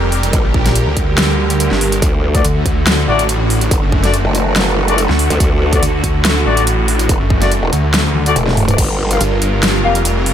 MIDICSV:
0, 0, Header, 1, 6, 480
1, 0, Start_track
1, 0, Tempo, 422535
1, 377, Time_signature, 4, 2, 24, 8
1, 11742, End_track
2, 0, Start_track
2, 0, Title_t, "Brass ensemble"
2, 0, Program_c, 0, 61
2, 2665, Note_on_c, 0, 57, 76
2, 2665, Note_on_c, 0, 66, 69
2, 2665, Note_on_c, 0, 74, 82
2, 2772, Note_off_c, 0, 66, 0
2, 2773, Note_off_c, 0, 57, 0
2, 2773, Note_off_c, 0, 74, 0
2, 3498, Note_on_c, 0, 57, 90
2, 3498, Note_on_c, 0, 66, 84
2, 3498, Note_on_c, 0, 74, 106
2, 3685, Note_off_c, 0, 57, 0
2, 3685, Note_off_c, 0, 66, 0
2, 3685, Note_off_c, 0, 74, 0
2, 4585, Note_on_c, 0, 57, 100
2, 4585, Note_on_c, 0, 66, 93
2, 4585, Note_on_c, 0, 74, 113
2, 4693, Note_off_c, 0, 57, 0
2, 4693, Note_off_c, 0, 66, 0
2, 4693, Note_off_c, 0, 74, 0
2, 5545, Note_on_c, 0, 57, 108
2, 5545, Note_on_c, 0, 66, 95
2, 5545, Note_on_c, 0, 74, 115
2, 5652, Note_off_c, 0, 66, 0
2, 5652, Note_off_c, 0, 74, 0
2, 5653, Note_off_c, 0, 57, 0
2, 6504, Note_on_c, 0, 57, 81
2, 6504, Note_on_c, 0, 74, 86
2, 6505, Note_on_c, 0, 66, 73
2, 6612, Note_off_c, 0, 57, 0
2, 6612, Note_off_c, 0, 66, 0
2, 6612, Note_off_c, 0, 74, 0
2, 7337, Note_on_c, 0, 57, 96
2, 7337, Note_on_c, 0, 66, 89
2, 7337, Note_on_c, 0, 74, 106
2, 7524, Note_off_c, 0, 57, 0
2, 7525, Note_off_c, 0, 66, 0
2, 7525, Note_off_c, 0, 74, 0
2, 8424, Note_on_c, 0, 57, 100
2, 8424, Note_on_c, 0, 66, 91
2, 8424, Note_on_c, 0, 74, 113
2, 8532, Note_off_c, 0, 57, 0
2, 8532, Note_off_c, 0, 66, 0
2, 8532, Note_off_c, 0, 74, 0
2, 9385, Note_on_c, 0, 57, 108
2, 9385, Note_on_c, 0, 66, 93
2, 9385, Note_on_c, 0, 74, 113
2, 9492, Note_off_c, 0, 57, 0
2, 9493, Note_off_c, 0, 66, 0
2, 9493, Note_off_c, 0, 74, 0
2, 10345, Note_on_c, 0, 58, 77
2, 10345, Note_on_c, 0, 67, 69
2, 10345, Note_on_c, 0, 77, 83
2, 10452, Note_off_c, 0, 58, 0
2, 10452, Note_off_c, 0, 67, 0
2, 10452, Note_off_c, 0, 77, 0
2, 11177, Note_on_c, 0, 58, 93
2, 11177, Note_on_c, 0, 67, 87
2, 11177, Note_on_c, 0, 77, 107
2, 11364, Note_off_c, 0, 58, 0
2, 11364, Note_off_c, 0, 67, 0
2, 11364, Note_off_c, 0, 77, 0
2, 11742, End_track
3, 0, Start_track
3, 0, Title_t, "Supersaw synth"
3, 0, Program_c, 1, 81
3, 0, Note_on_c, 1, 55, 83
3, 0, Note_on_c, 1, 67, 77
3, 0, Note_on_c, 1, 70, 90
3, 2252, Note_off_c, 1, 55, 0
3, 2252, Note_off_c, 1, 70, 0
3, 2259, Note_off_c, 1, 67, 0
3, 2297, Note_on_c, 1, 50, 83
3, 2297, Note_on_c, 1, 66, 96
3, 2298, Note_on_c, 1, 57, 80
3, 9932, Note_off_c, 1, 50, 0
3, 9932, Note_off_c, 1, 57, 0
3, 9932, Note_off_c, 1, 66, 0
3, 9977, Note_on_c, 1, 55, 85
3, 9977, Note_on_c, 1, 65, 77
3, 9977, Note_on_c, 1, 70, 90
3, 11742, Note_off_c, 1, 55, 0
3, 11742, Note_off_c, 1, 65, 0
3, 11742, Note_off_c, 1, 70, 0
3, 11742, End_track
4, 0, Start_track
4, 0, Title_t, "Detuned saw bass"
4, 0, Program_c, 2, 39
4, 0, Note_on_c, 2, 29, 99
4, 359, Note_off_c, 2, 29, 0
4, 506, Note_on_c, 2, 34, 96
4, 600, Note_off_c, 2, 34, 0
4, 617, Note_on_c, 2, 34, 105
4, 964, Note_off_c, 2, 34, 0
4, 984, Note_on_c, 2, 38, 99
4, 1924, Note_off_c, 2, 38, 0
4, 1946, Note_on_c, 2, 31, 93
4, 2280, Note_off_c, 2, 31, 0
4, 2778, Note_on_c, 2, 38, 99
4, 3000, Note_off_c, 2, 38, 0
4, 3017, Note_on_c, 2, 38, 94
4, 3479, Note_off_c, 2, 38, 0
4, 3498, Note_on_c, 2, 33, 101
4, 4200, Note_off_c, 2, 33, 0
4, 4346, Note_on_c, 2, 30, 98
4, 4440, Note_off_c, 2, 30, 0
4, 4457, Note_on_c, 2, 30, 101
4, 4805, Note_off_c, 2, 30, 0
4, 5785, Note_on_c, 2, 38, 96
4, 6005, Note_off_c, 2, 38, 0
4, 6616, Note_on_c, 2, 38, 101
4, 6839, Note_off_c, 2, 38, 0
4, 6857, Note_on_c, 2, 38, 97
4, 7319, Note_off_c, 2, 38, 0
4, 7337, Note_on_c, 2, 33, 99
4, 8039, Note_off_c, 2, 33, 0
4, 8185, Note_on_c, 2, 30, 98
4, 8280, Note_off_c, 2, 30, 0
4, 8297, Note_on_c, 2, 30, 102
4, 8645, Note_off_c, 2, 30, 0
4, 8777, Note_on_c, 2, 38, 94
4, 9479, Note_off_c, 2, 38, 0
4, 10458, Note_on_c, 2, 31, 96
4, 10680, Note_off_c, 2, 31, 0
4, 10698, Note_on_c, 2, 31, 96
4, 11160, Note_off_c, 2, 31, 0
4, 11178, Note_on_c, 2, 29, 102
4, 11742, Note_off_c, 2, 29, 0
4, 11742, End_track
5, 0, Start_track
5, 0, Title_t, "Wobble bass"
5, 0, Program_c, 3, 39
5, 377, Note_on_c, 3, 34, 98
5, 485, Note_off_c, 3, 34, 0
5, 2297, Note_on_c, 3, 38, 100
5, 2759, Note_off_c, 3, 38, 0
5, 4217, Note_on_c, 3, 30, 98
5, 4324, Note_off_c, 3, 30, 0
5, 4826, Note_on_c, 3, 30, 99
5, 5765, Note_off_c, 3, 30, 0
5, 6025, Note_on_c, 3, 38, 95
5, 6119, Note_off_c, 3, 38, 0
5, 6137, Note_on_c, 3, 38, 104
5, 6599, Note_off_c, 3, 38, 0
5, 8057, Note_on_c, 3, 30, 99
5, 8164, Note_off_c, 3, 30, 0
5, 8665, Note_on_c, 3, 28, 96
5, 8759, Note_off_c, 3, 28, 0
5, 9497, Note_on_c, 3, 28, 101
5, 9959, Note_off_c, 3, 28, 0
5, 9977, Note_on_c, 3, 31, 104
5, 10440, Note_off_c, 3, 31, 0
5, 11742, End_track
6, 0, Start_track
6, 0, Title_t, "Drums"
6, 138, Note_on_c, 9, 46, 85
6, 251, Note_off_c, 9, 46, 0
6, 265, Note_on_c, 9, 42, 55
6, 377, Note_off_c, 9, 42, 0
6, 377, Note_on_c, 9, 36, 127
6, 377, Note_on_c, 9, 42, 74
6, 491, Note_off_c, 9, 36, 0
6, 491, Note_off_c, 9, 42, 0
6, 617, Note_on_c, 9, 36, 113
6, 731, Note_off_c, 9, 36, 0
6, 746, Note_on_c, 9, 38, 39
6, 746, Note_on_c, 9, 42, 52
6, 857, Note_off_c, 9, 42, 0
6, 857, Note_on_c, 9, 42, 79
6, 859, Note_off_c, 9, 38, 0
6, 971, Note_off_c, 9, 42, 0
6, 1097, Note_on_c, 9, 36, 67
6, 1097, Note_on_c, 9, 42, 51
6, 1211, Note_off_c, 9, 36, 0
6, 1211, Note_off_c, 9, 42, 0
6, 1338, Note_on_c, 9, 38, 121
6, 1338, Note_on_c, 9, 42, 77
6, 1451, Note_off_c, 9, 38, 0
6, 1451, Note_off_c, 9, 42, 0
6, 1706, Note_on_c, 9, 42, 53
6, 1818, Note_off_c, 9, 42, 0
6, 1818, Note_on_c, 9, 42, 78
6, 1932, Note_off_c, 9, 42, 0
6, 1945, Note_on_c, 9, 38, 40
6, 2057, Note_on_c, 9, 46, 84
6, 2059, Note_off_c, 9, 38, 0
6, 2171, Note_off_c, 9, 46, 0
6, 2185, Note_on_c, 9, 42, 54
6, 2297, Note_on_c, 9, 36, 122
6, 2298, Note_off_c, 9, 42, 0
6, 2298, Note_on_c, 9, 42, 75
6, 2411, Note_off_c, 9, 36, 0
6, 2411, Note_off_c, 9, 42, 0
6, 2665, Note_on_c, 9, 36, 109
6, 2665, Note_on_c, 9, 42, 51
6, 2777, Note_off_c, 9, 42, 0
6, 2777, Note_on_c, 9, 42, 75
6, 2779, Note_off_c, 9, 36, 0
6, 2891, Note_off_c, 9, 42, 0
6, 3017, Note_on_c, 9, 36, 62
6, 3018, Note_on_c, 9, 42, 51
6, 3131, Note_off_c, 9, 36, 0
6, 3131, Note_off_c, 9, 42, 0
6, 3257, Note_on_c, 9, 38, 122
6, 3257, Note_on_c, 9, 42, 73
6, 3371, Note_off_c, 9, 38, 0
6, 3371, Note_off_c, 9, 42, 0
6, 3626, Note_on_c, 9, 42, 52
6, 3738, Note_off_c, 9, 42, 0
6, 3738, Note_on_c, 9, 42, 75
6, 3852, Note_off_c, 9, 42, 0
6, 3978, Note_on_c, 9, 46, 90
6, 4091, Note_off_c, 9, 46, 0
6, 4105, Note_on_c, 9, 42, 52
6, 4217, Note_on_c, 9, 36, 122
6, 4218, Note_off_c, 9, 42, 0
6, 4218, Note_on_c, 9, 42, 77
6, 4331, Note_off_c, 9, 36, 0
6, 4332, Note_off_c, 9, 42, 0
6, 4457, Note_on_c, 9, 36, 104
6, 4571, Note_off_c, 9, 36, 0
6, 4585, Note_on_c, 9, 38, 36
6, 4585, Note_on_c, 9, 42, 52
6, 4698, Note_off_c, 9, 42, 0
6, 4698, Note_on_c, 9, 42, 73
6, 4699, Note_off_c, 9, 38, 0
6, 4812, Note_off_c, 9, 42, 0
6, 4939, Note_on_c, 9, 42, 54
6, 5052, Note_off_c, 9, 42, 0
6, 5178, Note_on_c, 9, 38, 115
6, 5178, Note_on_c, 9, 42, 79
6, 5292, Note_off_c, 9, 38, 0
6, 5292, Note_off_c, 9, 42, 0
6, 5546, Note_on_c, 9, 42, 51
6, 5658, Note_off_c, 9, 42, 0
6, 5658, Note_on_c, 9, 42, 79
6, 5772, Note_off_c, 9, 42, 0
6, 5786, Note_on_c, 9, 38, 37
6, 5898, Note_on_c, 9, 46, 91
6, 5899, Note_off_c, 9, 38, 0
6, 6011, Note_off_c, 9, 46, 0
6, 6026, Note_on_c, 9, 42, 51
6, 6137, Note_on_c, 9, 36, 123
6, 6138, Note_off_c, 9, 42, 0
6, 6138, Note_on_c, 9, 42, 77
6, 6251, Note_off_c, 9, 36, 0
6, 6252, Note_off_c, 9, 42, 0
6, 6505, Note_on_c, 9, 36, 103
6, 6506, Note_on_c, 9, 42, 54
6, 6618, Note_off_c, 9, 36, 0
6, 6619, Note_off_c, 9, 42, 0
6, 6619, Note_on_c, 9, 42, 76
6, 6732, Note_off_c, 9, 42, 0
6, 6857, Note_on_c, 9, 36, 62
6, 6858, Note_on_c, 9, 42, 53
6, 6971, Note_off_c, 9, 36, 0
6, 6972, Note_off_c, 9, 42, 0
6, 7098, Note_on_c, 9, 38, 118
6, 7098, Note_on_c, 9, 42, 79
6, 7211, Note_off_c, 9, 38, 0
6, 7211, Note_off_c, 9, 42, 0
6, 7465, Note_on_c, 9, 42, 54
6, 7577, Note_off_c, 9, 42, 0
6, 7577, Note_on_c, 9, 42, 78
6, 7691, Note_off_c, 9, 42, 0
6, 7817, Note_on_c, 9, 46, 93
6, 7931, Note_off_c, 9, 46, 0
6, 7945, Note_on_c, 9, 42, 51
6, 8057, Note_off_c, 9, 42, 0
6, 8057, Note_on_c, 9, 36, 123
6, 8057, Note_on_c, 9, 42, 79
6, 8171, Note_off_c, 9, 36, 0
6, 8171, Note_off_c, 9, 42, 0
6, 8297, Note_on_c, 9, 36, 107
6, 8411, Note_off_c, 9, 36, 0
6, 8425, Note_on_c, 9, 38, 36
6, 8425, Note_on_c, 9, 42, 54
6, 8538, Note_off_c, 9, 42, 0
6, 8538, Note_on_c, 9, 42, 80
6, 8539, Note_off_c, 9, 38, 0
6, 8651, Note_off_c, 9, 42, 0
6, 8778, Note_on_c, 9, 42, 56
6, 8891, Note_off_c, 9, 42, 0
6, 9017, Note_on_c, 9, 38, 115
6, 9017, Note_on_c, 9, 42, 78
6, 9131, Note_off_c, 9, 38, 0
6, 9131, Note_off_c, 9, 42, 0
6, 9258, Note_on_c, 9, 48, 62
6, 9372, Note_off_c, 9, 48, 0
6, 9386, Note_on_c, 9, 42, 52
6, 9498, Note_off_c, 9, 42, 0
6, 9498, Note_on_c, 9, 42, 86
6, 9498, Note_on_c, 9, 47, 78
6, 9611, Note_off_c, 9, 42, 0
6, 9611, Note_off_c, 9, 47, 0
6, 9626, Note_on_c, 9, 38, 37
6, 9626, Note_on_c, 9, 47, 77
6, 9738, Note_on_c, 9, 45, 94
6, 9738, Note_on_c, 9, 46, 100
6, 9740, Note_off_c, 9, 38, 0
6, 9740, Note_off_c, 9, 47, 0
6, 9852, Note_off_c, 9, 45, 0
6, 9852, Note_off_c, 9, 46, 0
6, 9866, Note_on_c, 9, 42, 54
6, 9866, Note_on_c, 9, 45, 93
6, 9977, Note_on_c, 9, 36, 124
6, 9978, Note_off_c, 9, 42, 0
6, 9978, Note_on_c, 9, 42, 85
6, 9978, Note_on_c, 9, 49, 100
6, 9979, Note_off_c, 9, 45, 0
6, 10091, Note_off_c, 9, 36, 0
6, 10092, Note_off_c, 9, 42, 0
6, 10092, Note_off_c, 9, 49, 0
6, 10346, Note_on_c, 9, 42, 57
6, 10458, Note_off_c, 9, 42, 0
6, 10458, Note_on_c, 9, 42, 81
6, 10572, Note_off_c, 9, 42, 0
6, 10698, Note_on_c, 9, 42, 55
6, 10812, Note_off_c, 9, 42, 0
6, 10938, Note_on_c, 9, 38, 117
6, 10938, Note_on_c, 9, 42, 82
6, 11052, Note_off_c, 9, 38, 0
6, 11052, Note_off_c, 9, 42, 0
6, 11305, Note_on_c, 9, 42, 55
6, 11418, Note_off_c, 9, 42, 0
6, 11418, Note_on_c, 9, 42, 88
6, 11532, Note_off_c, 9, 42, 0
6, 11658, Note_on_c, 9, 46, 94
6, 11742, Note_off_c, 9, 46, 0
6, 11742, End_track
0, 0, End_of_file